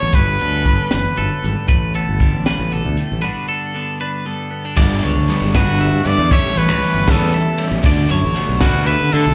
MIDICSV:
0, 0, Header, 1, 7, 480
1, 0, Start_track
1, 0, Tempo, 513259
1, 128, Time_signature, 6, 3, 24, 8
1, 8739, End_track
2, 0, Start_track
2, 0, Title_t, "Clean electric guitar"
2, 0, Program_c, 0, 27
2, 0, Note_on_c, 0, 69, 60
2, 131, Note_off_c, 0, 69, 0
2, 137, Note_on_c, 0, 71, 84
2, 384, Note_off_c, 0, 71, 0
2, 384, Note_on_c, 0, 69, 74
2, 854, Note_off_c, 0, 69, 0
2, 858, Note_on_c, 0, 71, 76
2, 1095, Note_off_c, 0, 71, 0
2, 1099, Note_on_c, 0, 69, 74
2, 1571, Note_off_c, 0, 69, 0
2, 1575, Note_on_c, 0, 71, 83
2, 1817, Note_off_c, 0, 71, 0
2, 1825, Note_on_c, 0, 69, 82
2, 2301, Note_off_c, 0, 69, 0
2, 2305, Note_on_c, 0, 71, 86
2, 2547, Note_off_c, 0, 71, 0
2, 2547, Note_on_c, 0, 69, 72
2, 3006, Note_off_c, 0, 69, 0
2, 3010, Note_on_c, 0, 71, 87
2, 3256, Note_off_c, 0, 71, 0
2, 3259, Note_on_c, 0, 69, 78
2, 3742, Note_off_c, 0, 69, 0
2, 3748, Note_on_c, 0, 71, 85
2, 3986, Note_off_c, 0, 71, 0
2, 3986, Note_on_c, 0, 69, 70
2, 4457, Note_off_c, 0, 69, 0
2, 4461, Note_on_c, 0, 74, 97
2, 4706, Note_off_c, 0, 74, 0
2, 4706, Note_on_c, 0, 73, 86
2, 5183, Note_off_c, 0, 73, 0
2, 5194, Note_on_c, 0, 71, 88
2, 5426, Note_off_c, 0, 71, 0
2, 5430, Note_on_c, 0, 76, 68
2, 5904, Note_off_c, 0, 76, 0
2, 5917, Note_on_c, 0, 76, 105
2, 6148, Note_off_c, 0, 76, 0
2, 6155, Note_on_c, 0, 73, 84
2, 6625, Note_off_c, 0, 73, 0
2, 6626, Note_on_c, 0, 71, 87
2, 6860, Note_off_c, 0, 71, 0
2, 6866, Note_on_c, 0, 76, 84
2, 7339, Note_off_c, 0, 76, 0
2, 7350, Note_on_c, 0, 74, 90
2, 7581, Note_off_c, 0, 74, 0
2, 7586, Note_on_c, 0, 73, 88
2, 8055, Note_on_c, 0, 71, 98
2, 8057, Note_off_c, 0, 73, 0
2, 8291, Note_off_c, 0, 71, 0
2, 8297, Note_on_c, 0, 76, 76
2, 8739, Note_off_c, 0, 76, 0
2, 8739, End_track
3, 0, Start_track
3, 0, Title_t, "Trumpet"
3, 0, Program_c, 1, 56
3, 0, Note_on_c, 1, 73, 93
3, 139, Note_on_c, 1, 71, 99
3, 153, Note_off_c, 1, 73, 0
3, 859, Note_off_c, 1, 71, 0
3, 875, Note_on_c, 1, 71, 79
3, 1370, Note_off_c, 1, 71, 0
3, 5201, Note_on_c, 1, 66, 93
3, 5679, Note_on_c, 1, 74, 93
3, 5693, Note_off_c, 1, 66, 0
3, 5902, Note_on_c, 1, 73, 106
3, 5916, Note_off_c, 1, 74, 0
3, 6152, Note_on_c, 1, 71, 98
3, 6167, Note_off_c, 1, 73, 0
3, 6646, Note_on_c, 1, 69, 86
3, 6660, Note_off_c, 1, 71, 0
3, 7170, Note_off_c, 1, 69, 0
3, 8050, Note_on_c, 1, 66, 92
3, 8288, Note_on_c, 1, 71, 105
3, 8302, Note_off_c, 1, 66, 0
3, 8536, Note_on_c, 1, 69, 103
3, 8550, Note_off_c, 1, 71, 0
3, 8739, Note_off_c, 1, 69, 0
3, 8739, End_track
4, 0, Start_track
4, 0, Title_t, "Overdriven electric guitar"
4, 0, Program_c, 2, 29
4, 4456, Note_on_c, 2, 50, 94
4, 4466, Note_on_c, 2, 55, 90
4, 4472, Note_on_c, 2, 59, 92
4, 4474, Note_on_c, 2, 62, 98
4, 4771, Note_off_c, 2, 50, 0
4, 4776, Note_off_c, 2, 55, 0
4, 4779, Note_off_c, 2, 59, 0
4, 4781, Note_off_c, 2, 62, 0
4, 4939, Note_on_c, 2, 50, 76
4, 4941, Note_on_c, 2, 55, 80
4, 4952, Note_on_c, 2, 59, 81
4, 4954, Note_on_c, 2, 62, 84
4, 5179, Note_off_c, 2, 62, 0
4, 5181, Note_off_c, 2, 50, 0
4, 5181, Note_off_c, 2, 55, 0
4, 5182, Note_off_c, 2, 59, 0
4, 5190, Note_on_c, 2, 62, 86
4, 5193, Note_on_c, 2, 59, 87
4, 5194, Note_on_c, 2, 55, 76
4, 5195, Note_on_c, 2, 50, 74
4, 5497, Note_off_c, 2, 62, 0
4, 5499, Note_off_c, 2, 55, 0
4, 5499, Note_off_c, 2, 59, 0
4, 5500, Note_off_c, 2, 50, 0
4, 5658, Note_on_c, 2, 62, 73
4, 5666, Note_on_c, 2, 59, 70
4, 5669, Note_on_c, 2, 55, 59
4, 5670, Note_on_c, 2, 50, 64
4, 5897, Note_off_c, 2, 50, 0
4, 5898, Note_off_c, 2, 62, 0
4, 5900, Note_off_c, 2, 55, 0
4, 5901, Note_on_c, 2, 52, 97
4, 5903, Note_off_c, 2, 59, 0
4, 5911, Note_on_c, 2, 55, 90
4, 5911, Note_on_c, 2, 61, 96
4, 5917, Note_on_c, 2, 64, 98
4, 6212, Note_off_c, 2, 52, 0
4, 6216, Note_off_c, 2, 55, 0
4, 6216, Note_off_c, 2, 61, 0
4, 6219, Note_off_c, 2, 64, 0
4, 6382, Note_on_c, 2, 52, 81
4, 6388, Note_on_c, 2, 55, 77
4, 6392, Note_on_c, 2, 61, 77
4, 6398, Note_on_c, 2, 64, 82
4, 6600, Note_off_c, 2, 64, 0
4, 6603, Note_off_c, 2, 61, 0
4, 6605, Note_off_c, 2, 52, 0
4, 6605, Note_off_c, 2, 55, 0
4, 6611, Note_on_c, 2, 64, 88
4, 6614, Note_on_c, 2, 61, 92
4, 6617, Note_on_c, 2, 52, 77
4, 6617, Note_on_c, 2, 55, 74
4, 6925, Note_off_c, 2, 64, 0
4, 6926, Note_off_c, 2, 61, 0
4, 6928, Note_off_c, 2, 52, 0
4, 6928, Note_off_c, 2, 55, 0
4, 7091, Note_on_c, 2, 64, 77
4, 7092, Note_on_c, 2, 61, 82
4, 7099, Note_on_c, 2, 55, 64
4, 7102, Note_on_c, 2, 52, 65
4, 7328, Note_off_c, 2, 55, 0
4, 7329, Note_off_c, 2, 52, 0
4, 7332, Note_off_c, 2, 64, 0
4, 7332, Note_on_c, 2, 57, 100
4, 7333, Note_off_c, 2, 61, 0
4, 7333, Note_on_c, 2, 50, 88
4, 7342, Note_on_c, 2, 62, 88
4, 7345, Note_on_c, 2, 66, 115
4, 7643, Note_off_c, 2, 57, 0
4, 7644, Note_off_c, 2, 50, 0
4, 7648, Note_off_c, 2, 62, 0
4, 7650, Note_off_c, 2, 66, 0
4, 7821, Note_on_c, 2, 50, 78
4, 7822, Note_on_c, 2, 57, 91
4, 7826, Note_on_c, 2, 62, 76
4, 7826, Note_on_c, 2, 66, 84
4, 8041, Note_off_c, 2, 62, 0
4, 8041, Note_off_c, 2, 66, 0
4, 8047, Note_off_c, 2, 50, 0
4, 8047, Note_off_c, 2, 57, 0
4, 8052, Note_on_c, 2, 62, 99
4, 8052, Note_on_c, 2, 66, 96
4, 8058, Note_on_c, 2, 50, 66
4, 8059, Note_on_c, 2, 57, 83
4, 8361, Note_off_c, 2, 62, 0
4, 8361, Note_off_c, 2, 66, 0
4, 8365, Note_off_c, 2, 50, 0
4, 8365, Note_off_c, 2, 57, 0
4, 8542, Note_on_c, 2, 66, 70
4, 8545, Note_on_c, 2, 62, 69
4, 8549, Note_on_c, 2, 57, 68
4, 8552, Note_on_c, 2, 50, 68
4, 8739, Note_off_c, 2, 50, 0
4, 8739, Note_off_c, 2, 57, 0
4, 8739, Note_off_c, 2, 62, 0
4, 8739, Note_off_c, 2, 66, 0
4, 8739, End_track
5, 0, Start_track
5, 0, Title_t, "Clean electric guitar"
5, 0, Program_c, 3, 27
5, 0, Note_on_c, 3, 40, 64
5, 0, Note_on_c, 3, 50, 56
5, 0, Note_on_c, 3, 55, 54
5, 0, Note_on_c, 3, 59, 54
5, 0, Note_on_c, 3, 64, 64
5, 133, Note_off_c, 3, 40, 0
5, 133, Note_off_c, 3, 50, 0
5, 144, Note_on_c, 3, 43, 74
5, 147, Note_off_c, 3, 64, 0
5, 152, Note_on_c, 3, 50, 57
5, 153, Note_off_c, 3, 55, 0
5, 157, Note_off_c, 3, 59, 0
5, 157, Note_on_c, 3, 59, 56
5, 168, Note_on_c, 3, 61, 57
5, 175, Note_on_c, 3, 66, 67
5, 375, Note_off_c, 3, 61, 0
5, 386, Note_on_c, 3, 61, 60
5, 603, Note_off_c, 3, 50, 0
5, 612, Note_on_c, 3, 50, 52
5, 616, Note_off_c, 3, 59, 0
5, 619, Note_on_c, 3, 59, 53
5, 847, Note_off_c, 3, 43, 0
5, 851, Note_on_c, 3, 40, 65
5, 1079, Note_off_c, 3, 40, 0
5, 1083, Note_on_c, 3, 42, 64
5, 1330, Note_off_c, 3, 42, 0
5, 1336, Note_on_c, 3, 43, 68
5, 1557, Note_off_c, 3, 61, 0
5, 1566, Note_on_c, 3, 45, 77
5, 1572, Note_off_c, 3, 66, 0
5, 1577, Note_off_c, 3, 43, 0
5, 1594, Note_off_c, 3, 59, 0
5, 1827, Note_on_c, 3, 59, 62
5, 2047, Note_off_c, 3, 50, 0
5, 2054, Note_off_c, 3, 45, 0
5, 2058, Note_on_c, 3, 50, 59
5, 2068, Note_on_c, 3, 55, 55
5, 2305, Note_on_c, 3, 49, 65
5, 2532, Note_off_c, 3, 49, 0
5, 2536, Note_on_c, 3, 47, 57
5, 2779, Note_off_c, 3, 47, 0
5, 2797, Note_on_c, 3, 45, 60
5, 3007, Note_on_c, 3, 43, 75
5, 3008, Note_off_c, 3, 50, 0
5, 3018, Note_on_c, 3, 50, 71
5, 3021, Note_off_c, 3, 55, 0
5, 3025, Note_off_c, 3, 59, 0
5, 3025, Note_on_c, 3, 59, 55
5, 3029, Note_on_c, 3, 62, 68
5, 3030, Note_off_c, 3, 45, 0
5, 3035, Note_on_c, 3, 66, 74
5, 3245, Note_off_c, 3, 62, 0
5, 3256, Note_on_c, 3, 62, 60
5, 3492, Note_off_c, 3, 50, 0
5, 3501, Note_off_c, 3, 59, 0
5, 3503, Note_on_c, 3, 50, 57
5, 3512, Note_on_c, 3, 59, 58
5, 3740, Note_off_c, 3, 62, 0
5, 3755, Note_on_c, 3, 62, 62
5, 3969, Note_off_c, 3, 43, 0
5, 3973, Note_off_c, 3, 59, 0
5, 3980, Note_on_c, 3, 43, 59
5, 3984, Note_on_c, 3, 59, 52
5, 4203, Note_off_c, 3, 59, 0
5, 4210, Note_off_c, 3, 62, 0
5, 4214, Note_on_c, 3, 59, 57
5, 4348, Note_off_c, 3, 59, 0
5, 4348, Note_on_c, 3, 62, 49
5, 4433, Note_off_c, 3, 43, 0
5, 4441, Note_off_c, 3, 66, 0
5, 4455, Note_on_c, 3, 43, 80
5, 4466, Note_off_c, 3, 62, 0
5, 4709, Note_on_c, 3, 62, 63
5, 4926, Note_off_c, 3, 50, 0
5, 4937, Note_on_c, 3, 50, 65
5, 4944, Note_on_c, 3, 59, 64
5, 5171, Note_off_c, 3, 62, 0
5, 5182, Note_on_c, 3, 62, 68
5, 5405, Note_off_c, 3, 43, 0
5, 5416, Note_on_c, 3, 43, 61
5, 5669, Note_off_c, 3, 59, 0
5, 5673, Note_on_c, 3, 59, 64
5, 5869, Note_off_c, 3, 43, 0
5, 5872, Note_off_c, 3, 62, 0
5, 5897, Note_off_c, 3, 50, 0
5, 5903, Note_on_c, 3, 45, 81
5, 5911, Note_on_c, 3, 52, 61
5, 5916, Note_off_c, 3, 59, 0
5, 5920, Note_on_c, 3, 55, 53
5, 5920, Note_on_c, 3, 59, 61
5, 5933, Note_on_c, 3, 67, 79
5, 6144, Note_off_c, 3, 59, 0
5, 6148, Note_on_c, 3, 59, 65
5, 6373, Note_off_c, 3, 55, 0
5, 6374, Note_off_c, 3, 52, 0
5, 6378, Note_on_c, 3, 52, 67
5, 6388, Note_on_c, 3, 55, 55
5, 6618, Note_off_c, 3, 59, 0
5, 6622, Note_on_c, 3, 59, 60
5, 6850, Note_on_c, 3, 40, 67
5, 7083, Note_off_c, 3, 55, 0
5, 7094, Note_on_c, 3, 55, 58
5, 7316, Note_off_c, 3, 52, 0
5, 7320, Note_on_c, 3, 50, 80
5, 7322, Note_off_c, 3, 67, 0
5, 7331, Note_off_c, 3, 40, 0
5, 7334, Note_off_c, 3, 55, 0
5, 7336, Note_off_c, 3, 45, 0
5, 7564, Note_on_c, 3, 64, 72
5, 7802, Note_on_c, 3, 57, 67
5, 7806, Note_off_c, 3, 59, 0
5, 7810, Note_on_c, 3, 59, 55
5, 8044, Note_on_c, 3, 47, 72
5, 8283, Note_off_c, 3, 47, 0
5, 8287, Note_on_c, 3, 49, 67
5, 8521, Note_off_c, 3, 50, 0
5, 8527, Note_off_c, 3, 49, 0
5, 8541, Note_on_c, 3, 50, 65
5, 8734, Note_off_c, 3, 57, 0
5, 8739, Note_off_c, 3, 50, 0
5, 8739, Note_off_c, 3, 59, 0
5, 8739, Note_off_c, 3, 64, 0
5, 8739, End_track
6, 0, Start_track
6, 0, Title_t, "Fingered electric bass"
6, 0, Program_c, 4, 33
6, 25, Note_on_c, 4, 33, 79
6, 120, Note_off_c, 4, 33, 0
6, 126, Note_on_c, 4, 31, 104
6, 339, Note_off_c, 4, 31, 0
6, 387, Note_on_c, 4, 38, 77
6, 592, Note_off_c, 4, 38, 0
6, 614, Note_on_c, 4, 31, 82
6, 719, Note_off_c, 4, 31, 0
6, 877, Note_on_c, 4, 30, 90
6, 972, Note_off_c, 4, 30, 0
6, 1106, Note_on_c, 4, 31, 89
6, 1207, Note_off_c, 4, 31, 0
6, 1348, Note_on_c, 4, 32, 95
6, 1448, Note_off_c, 4, 32, 0
6, 1586, Note_on_c, 4, 33, 83
6, 1899, Note_off_c, 4, 33, 0
6, 1953, Note_on_c, 4, 31, 79
6, 2158, Note_off_c, 4, 31, 0
6, 2181, Note_on_c, 4, 33, 76
6, 2392, Note_off_c, 4, 33, 0
6, 2428, Note_on_c, 4, 33, 77
6, 2636, Note_off_c, 4, 33, 0
6, 2667, Note_on_c, 4, 38, 85
6, 2770, Note_off_c, 4, 38, 0
6, 2915, Note_on_c, 4, 33, 72
6, 3015, Note_off_c, 4, 33, 0
6, 4467, Note_on_c, 4, 31, 106
6, 4676, Note_off_c, 4, 31, 0
6, 4708, Note_on_c, 4, 37, 81
6, 4811, Note_off_c, 4, 37, 0
6, 4832, Note_on_c, 4, 38, 86
6, 4933, Note_off_c, 4, 38, 0
6, 5063, Note_on_c, 4, 30, 76
6, 5168, Note_off_c, 4, 30, 0
6, 5191, Note_on_c, 4, 31, 105
6, 5502, Note_off_c, 4, 31, 0
6, 5543, Note_on_c, 4, 43, 82
6, 5647, Note_off_c, 4, 43, 0
6, 5662, Note_on_c, 4, 43, 88
6, 5767, Note_off_c, 4, 43, 0
6, 5781, Note_on_c, 4, 40, 86
6, 5886, Note_off_c, 4, 40, 0
6, 5911, Note_on_c, 4, 33, 98
6, 6116, Note_off_c, 4, 33, 0
6, 6135, Note_on_c, 4, 33, 88
6, 6249, Note_off_c, 4, 33, 0
6, 6249, Note_on_c, 4, 37, 90
6, 6358, Note_off_c, 4, 37, 0
6, 6491, Note_on_c, 4, 31, 88
6, 6619, Note_on_c, 4, 40, 96
6, 6633, Note_off_c, 4, 31, 0
6, 6828, Note_off_c, 4, 40, 0
6, 7213, Note_on_c, 4, 33, 82
6, 7319, Note_off_c, 4, 33, 0
6, 7340, Note_on_c, 4, 38, 95
6, 7547, Note_off_c, 4, 38, 0
6, 7582, Note_on_c, 4, 42, 82
6, 7683, Note_off_c, 4, 42, 0
6, 7701, Note_on_c, 4, 33, 85
6, 7802, Note_off_c, 4, 33, 0
6, 7938, Note_on_c, 4, 35, 80
6, 8039, Note_off_c, 4, 35, 0
6, 8054, Note_on_c, 4, 38, 123
6, 8366, Note_off_c, 4, 38, 0
6, 8423, Note_on_c, 4, 50, 89
6, 8521, Note_off_c, 4, 50, 0
6, 8543, Note_on_c, 4, 50, 97
6, 8641, Note_off_c, 4, 50, 0
6, 8660, Note_on_c, 4, 35, 85
6, 8739, Note_off_c, 4, 35, 0
6, 8739, End_track
7, 0, Start_track
7, 0, Title_t, "Drums"
7, 117, Note_on_c, 9, 42, 85
7, 125, Note_on_c, 9, 36, 110
7, 210, Note_off_c, 9, 42, 0
7, 218, Note_off_c, 9, 36, 0
7, 364, Note_on_c, 9, 42, 63
7, 457, Note_off_c, 9, 42, 0
7, 612, Note_on_c, 9, 36, 72
7, 617, Note_on_c, 9, 42, 59
7, 706, Note_off_c, 9, 36, 0
7, 711, Note_off_c, 9, 42, 0
7, 849, Note_on_c, 9, 42, 88
7, 850, Note_on_c, 9, 38, 103
7, 943, Note_off_c, 9, 42, 0
7, 944, Note_off_c, 9, 38, 0
7, 1097, Note_on_c, 9, 42, 55
7, 1191, Note_off_c, 9, 42, 0
7, 1348, Note_on_c, 9, 42, 57
7, 1442, Note_off_c, 9, 42, 0
7, 1578, Note_on_c, 9, 36, 110
7, 1578, Note_on_c, 9, 42, 86
7, 1671, Note_off_c, 9, 42, 0
7, 1672, Note_off_c, 9, 36, 0
7, 1813, Note_on_c, 9, 42, 65
7, 1906, Note_off_c, 9, 42, 0
7, 2059, Note_on_c, 9, 36, 76
7, 2062, Note_on_c, 9, 42, 58
7, 2153, Note_off_c, 9, 36, 0
7, 2155, Note_off_c, 9, 42, 0
7, 2300, Note_on_c, 9, 42, 82
7, 2301, Note_on_c, 9, 38, 109
7, 2394, Note_off_c, 9, 42, 0
7, 2395, Note_off_c, 9, 38, 0
7, 2543, Note_on_c, 9, 42, 50
7, 2636, Note_off_c, 9, 42, 0
7, 2776, Note_on_c, 9, 42, 52
7, 2870, Note_off_c, 9, 42, 0
7, 4455, Note_on_c, 9, 49, 120
7, 4464, Note_on_c, 9, 36, 117
7, 4549, Note_off_c, 9, 49, 0
7, 4557, Note_off_c, 9, 36, 0
7, 4701, Note_on_c, 9, 51, 78
7, 4795, Note_off_c, 9, 51, 0
7, 4951, Note_on_c, 9, 51, 72
7, 5045, Note_off_c, 9, 51, 0
7, 5186, Note_on_c, 9, 36, 80
7, 5188, Note_on_c, 9, 38, 105
7, 5188, Note_on_c, 9, 51, 100
7, 5280, Note_off_c, 9, 36, 0
7, 5281, Note_off_c, 9, 51, 0
7, 5282, Note_off_c, 9, 38, 0
7, 5427, Note_on_c, 9, 51, 82
7, 5520, Note_off_c, 9, 51, 0
7, 5663, Note_on_c, 9, 51, 66
7, 5757, Note_off_c, 9, 51, 0
7, 5903, Note_on_c, 9, 36, 125
7, 5905, Note_on_c, 9, 51, 100
7, 5997, Note_off_c, 9, 36, 0
7, 5998, Note_off_c, 9, 51, 0
7, 6141, Note_on_c, 9, 51, 83
7, 6234, Note_off_c, 9, 51, 0
7, 6376, Note_on_c, 9, 51, 73
7, 6470, Note_off_c, 9, 51, 0
7, 6617, Note_on_c, 9, 36, 85
7, 6618, Note_on_c, 9, 51, 96
7, 6619, Note_on_c, 9, 38, 116
7, 6710, Note_off_c, 9, 36, 0
7, 6711, Note_off_c, 9, 51, 0
7, 6712, Note_off_c, 9, 38, 0
7, 6852, Note_on_c, 9, 51, 75
7, 6946, Note_off_c, 9, 51, 0
7, 7091, Note_on_c, 9, 51, 73
7, 7185, Note_off_c, 9, 51, 0
7, 7321, Note_on_c, 9, 49, 102
7, 7332, Note_on_c, 9, 36, 124
7, 7414, Note_off_c, 9, 49, 0
7, 7425, Note_off_c, 9, 36, 0
7, 7570, Note_on_c, 9, 51, 80
7, 7663, Note_off_c, 9, 51, 0
7, 7813, Note_on_c, 9, 51, 77
7, 7907, Note_off_c, 9, 51, 0
7, 8047, Note_on_c, 9, 51, 106
7, 8048, Note_on_c, 9, 38, 122
7, 8054, Note_on_c, 9, 36, 87
7, 8141, Note_off_c, 9, 51, 0
7, 8142, Note_off_c, 9, 38, 0
7, 8147, Note_off_c, 9, 36, 0
7, 8287, Note_on_c, 9, 51, 84
7, 8381, Note_off_c, 9, 51, 0
7, 8532, Note_on_c, 9, 51, 66
7, 8626, Note_off_c, 9, 51, 0
7, 8739, End_track
0, 0, End_of_file